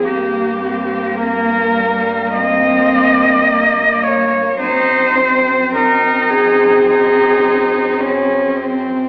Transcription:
0, 0, Header, 1, 5, 480
1, 0, Start_track
1, 0, Key_signature, -4, "major"
1, 0, Tempo, 1119403
1, 15, Time_signature, 4, 2, 24, 8
1, 495, Tempo, 1185771
1, 975, Tempo, 1132075
1, 3837, End_track
2, 0, Start_track
2, 0, Title_t, "Cello"
2, 0, Program_c, 0, 42
2, 21, Note_on_c, 0, 67, 61
2, 500, Note_on_c, 0, 70, 77
2, 506, Note_off_c, 0, 67, 0
2, 972, Note_off_c, 0, 70, 0
2, 974, Note_on_c, 0, 75, 76
2, 1694, Note_on_c, 0, 73, 66
2, 1701, Note_off_c, 0, 75, 0
2, 1929, Note_off_c, 0, 73, 0
2, 1932, Note_on_c, 0, 72, 84
2, 2406, Note_off_c, 0, 72, 0
2, 2419, Note_on_c, 0, 70, 70
2, 2654, Note_on_c, 0, 68, 73
2, 2660, Note_off_c, 0, 70, 0
2, 3615, Note_off_c, 0, 68, 0
2, 3837, End_track
3, 0, Start_track
3, 0, Title_t, "Cello"
3, 0, Program_c, 1, 42
3, 24, Note_on_c, 1, 58, 55
3, 252, Note_off_c, 1, 58, 0
3, 260, Note_on_c, 1, 60, 53
3, 504, Note_on_c, 1, 58, 57
3, 510, Note_off_c, 1, 60, 0
3, 744, Note_on_c, 1, 55, 54
3, 750, Note_off_c, 1, 58, 0
3, 981, Note_on_c, 1, 60, 70
3, 988, Note_off_c, 1, 55, 0
3, 1466, Note_on_c, 1, 58, 54
3, 1472, Note_off_c, 1, 60, 0
3, 1935, Note_off_c, 1, 58, 0
3, 1937, Note_on_c, 1, 63, 58
3, 2174, Note_on_c, 1, 60, 53
3, 2180, Note_off_c, 1, 63, 0
3, 2419, Note_on_c, 1, 63, 61
3, 2425, Note_off_c, 1, 60, 0
3, 2890, Note_off_c, 1, 63, 0
3, 2893, Note_on_c, 1, 63, 57
3, 3374, Note_on_c, 1, 61, 55
3, 3380, Note_off_c, 1, 63, 0
3, 3613, Note_on_c, 1, 60, 51
3, 3619, Note_off_c, 1, 61, 0
3, 3837, Note_off_c, 1, 60, 0
3, 3837, End_track
4, 0, Start_track
4, 0, Title_t, "Cello"
4, 0, Program_c, 2, 42
4, 19, Note_on_c, 2, 58, 54
4, 1920, Note_off_c, 2, 58, 0
4, 1938, Note_on_c, 2, 60, 50
4, 3837, Note_off_c, 2, 60, 0
4, 3837, End_track
5, 0, Start_track
5, 0, Title_t, "Cello"
5, 0, Program_c, 3, 42
5, 12, Note_on_c, 3, 43, 49
5, 1933, Note_off_c, 3, 43, 0
5, 1937, Note_on_c, 3, 42, 50
5, 3837, Note_off_c, 3, 42, 0
5, 3837, End_track
0, 0, End_of_file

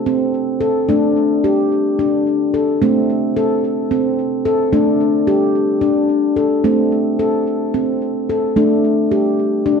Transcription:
0, 0, Header, 1, 2, 480
1, 0, Start_track
1, 0, Key_signature, 0, "minor"
1, 0, Tempo, 547945
1, 785, Time_signature, 7, 3, 24, 8
1, 8585, End_track
2, 0, Start_track
2, 0, Title_t, "Handpan"
2, 0, Program_c, 0, 114
2, 0, Note_on_c, 0, 57, 63
2, 55, Note_on_c, 0, 60, 64
2, 530, Note_on_c, 0, 69, 62
2, 540, Note_off_c, 0, 60, 0
2, 751, Note_off_c, 0, 57, 0
2, 776, Note_on_c, 0, 62, 70
2, 778, Note_off_c, 0, 69, 0
2, 786, Note_on_c, 0, 57, 62
2, 1261, Note_off_c, 0, 62, 0
2, 1263, Note_on_c, 0, 67, 64
2, 1744, Note_off_c, 0, 67, 0
2, 1744, Note_on_c, 0, 62, 64
2, 2225, Note_off_c, 0, 62, 0
2, 2225, Note_on_c, 0, 69, 61
2, 2433, Note_off_c, 0, 57, 0
2, 2465, Note_off_c, 0, 69, 0
2, 2467, Note_on_c, 0, 60, 71
2, 2474, Note_on_c, 0, 57, 68
2, 2947, Note_off_c, 0, 60, 0
2, 2947, Note_on_c, 0, 69, 68
2, 3425, Note_on_c, 0, 60, 66
2, 3427, Note_off_c, 0, 69, 0
2, 3901, Note_on_c, 0, 69, 68
2, 3907, Note_off_c, 0, 60, 0
2, 4118, Note_off_c, 0, 57, 0
2, 4139, Note_on_c, 0, 62, 72
2, 4142, Note_on_c, 0, 57, 62
2, 4144, Note_off_c, 0, 69, 0
2, 4620, Note_on_c, 0, 67, 65
2, 4624, Note_off_c, 0, 62, 0
2, 5092, Note_on_c, 0, 62, 65
2, 5104, Note_off_c, 0, 67, 0
2, 5575, Note_on_c, 0, 69, 57
2, 5580, Note_off_c, 0, 62, 0
2, 5792, Note_off_c, 0, 57, 0
2, 5818, Note_on_c, 0, 60, 69
2, 5820, Note_on_c, 0, 57, 64
2, 5822, Note_off_c, 0, 69, 0
2, 6301, Note_on_c, 0, 69, 62
2, 6303, Note_off_c, 0, 60, 0
2, 6781, Note_on_c, 0, 60, 62
2, 6784, Note_off_c, 0, 69, 0
2, 7264, Note_off_c, 0, 60, 0
2, 7266, Note_on_c, 0, 69, 63
2, 7469, Note_off_c, 0, 57, 0
2, 7501, Note_on_c, 0, 57, 68
2, 7505, Note_on_c, 0, 62, 68
2, 7506, Note_off_c, 0, 69, 0
2, 7984, Note_off_c, 0, 62, 0
2, 7984, Note_on_c, 0, 67, 60
2, 8461, Note_on_c, 0, 62, 67
2, 8463, Note_off_c, 0, 67, 0
2, 8585, Note_off_c, 0, 57, 0
2, 8585, Note_off_c, 0, 62, 0
2, 8585, End_track
0, 0, End_of_file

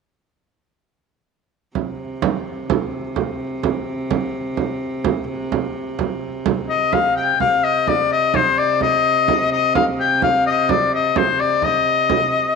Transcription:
0, 0, Header, 1, 4, 480
1, 0, Start_track
1, 0, Key_signature, -3, "minor"
1, 0, Tempo, 469851
1, 1797, Time_signature, 6, 3, 24, 8
1, 12824, End_track
2, 0, Start_track
2, 0, Title_t, "Shawm"
2, 0, Program_c, 0, 111
2, 6839, Note_on_c, 0, 75, 76
2, 7081, Note_on_c, 0, 77, 85
2, 7096, Note_off_c, 0, 75, 0
2, 7313, Note_off_c, 0, 77, 0
2, 7319, Note_on_c, 0, 79, 75
2, 7544, Note_off_c, 0, 79, 0
2, 7566, Note_on_c, 0, 77, 87
2, 7806, Note_on_c, 0, 75, 80
2, 7821, Note_off_c, 0, 77, 0
2, 8054, Note_on_c, 0, 74, 83
2, 8069, Note_off_c, 0, 75, 0
2, 8288, Note_off_c, 0, 74, 0
2, 8297, Note_on_c, 0, 75, 84
2, 8534, Note_on_c, 0, 72, 83
2, 8549, Note_off_c, 0, 75, 0
2, 8767, Note_on_c, 0, 74, 77
2, 8782, Note_off_c, 0, 72, 0
2, 9004, Note_off_c, 0, 74, 0
2, 9016, Note_on_c, 0, 75, 83
2, 9688, Note_off_c, 0, 75, 0
2, 9726, Note_on_c, 0, 75, 84
2, 9947, Note_off_c, 0, 75, 0
2, 9965, Note_on_c, 0, 77, 79
2, 10072, Note_off_c, 0, 77, 0
2, 10215, Note_on_c, 0, 79, 94
2, 10431, Note_off_c, 0, 79, 0
2, 10451, Note_on_c, 0, 77, 88
2, 10669, Note_off_c, 0, 77, 0
2, 10695, Note_on_c, 0, 75, 79
2, 10928, Note_on_c, 0, 74, 82
2, 10944, Note_off_c, 0, 75, 0
2, 11164, Note_off_c, 0, 74, 0
2, 11178, Note_on_c, 0, 75, 79
2, 11415, Note_on_c, 0, 72, 79
2, 11431, Note_off_c, 0, 75, 0
2, 11647, Note_on_c, 0, 74, 78
2, 11662, Note_off_c, 0, 72, 0
2, 11898, Note_on_c, 0, 75, 85
2, 11913, Note_off_c, 0, 74, 0
2, 12824, Note_off_c, 0, 75, 0
2, 12824, End_track
3, 0, Start_track
3, 0, Title_t, "Viola da gamba"
3, 0, Program_c, 1, 42
3, 1801, Note_on_c, 1, 48, 57
3, 7559, Note_off_c, 1, 48, 0
3, 7565, Note_on_c, 1, 48, 61
3, 12824, Note_off_c, 1, 48, 0
3, 12824, End_track
4, 0, Start_track
4, 0, Title_t, "Frame drum"
4, 1789, Note_on_c, 9, 64, 61
4, 1891, Note_off_c, 9, 64, 0
4, 2270, Note_on_c, 9, 64, 83
4, 2372, Note_off_c, 9, 64, 0
4, 2755, Note_on_c, 9, 64, 85
4, 2857, Note_off_c, 9, 64, 0
4, 3228, Note_on_c, 9, 64, 68
4, 3330, Note_off_c, 9, 64, 0
4, 3713, Note_on_c, 9, 64, 73
4, 3815, Note_off_c, 9, 64, 0
4, 4194, Note_on_c, 9, 64, 75
4, 4296, Note_off_c, 9, 64, 0
4, 4671, Note_on_c, 9, 64, 63
4, 4773, Note_off_c, 9, 64, 0
4, 5154, Note_on_c, 9, 64, 79
4, 5256, Note_off_c, 9, 64, 0
4, 5639, Note_on_c, 9, 64, 73
4, 5741, Note_off_c, 9, 64, 0
4, 6116, Note_on_c, 9, 64, 69
4, 6218, Note_off_c, 9, 64, 0
4, 6596, Note_on_c, 9, 64, 78
4, 6699, Note_off_c, 9, 64, 0
4, 7075, Note_on_c, 9, 64, 70
4, 7177, Note_off_c, 9, 64, 0
4, 7320, Note_on_c, 9, 64, 22
4, 7422, Note_off_c, 9, 64, 0
4, 7562, Note_on_c, 9, 64, 56
4, 7665, Note_off_c, 9, 64, 0
4, 8044, Note_on_c, 9, 64, 65
4, 8146, Note_off_c, 9, 64, 0
4, 8519, Note_on_c, 9, 64, 74
4, 8621, Note_off_c, 9, 64, 0
4, 8766, Note_on_c, 9, 64, 22
4, 8868, Note_off_c, 9, 64, 0
4, 8998, Note_on_c, 9, 64, 59
4, 9100, Note_off_c, 9, 64, 0
4, 9482, Note_on_c, 9, 64, 74
4, 9584, Note_off_c, 9, 64, 0
4, 9963, Note_on_c, 9, 64, 80
4, 10065, Note_off_c, 9, 64, 0
4, 10205, Note_on_c, 9, 64, 26
4, 10307, Note_off_c, 9, 64, 0
4, 10442, Note_on_c, 9, 64, 71
4, 10544, Note_off_c, 9, 64, 0
4, 10921, Note_on_c, 9, 64, 82
4, 11023, Note_off_c, 9, 64, 0
4, 11399, Note_on_c, 9, 64, 79
4, 11501, Note_off_c, 9, 64, 0
4, 11642, Note_on_c, 9, 64, 26
4, 11744, Note_off_c, 9, 64, 0
4, 11871, Note_on_c, 9, 64, 67
4, 11974, Note_off_c, 9, 64, 0
4, 12120, Note_on_c, 9, 64, 23
4, 12222, Note_off_c, 9, 64, 0
4, 12358, Note_on_c, 9, 64, 75
4, 12460, Note_off_c, 9, 64, 0
4, 12824, End_track
0, 0, End_of_file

